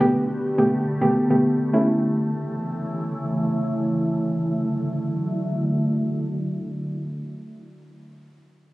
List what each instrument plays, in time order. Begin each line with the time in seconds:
Already playing: ambient pad D3 A3 B3 G4
0.00 synth pluck B2 A3 B3 G4
0.58 synth pluck B2 A3 B3 G4
1.01 synth pluck B2 A3 B3 G4
1.30 synth pluck B2 A3 B3 G4
1.73 ambient pad C#3 E3 E4, synth pluck A3 C#4 E4
4.33 ambient pad D3 F#3 A3 E4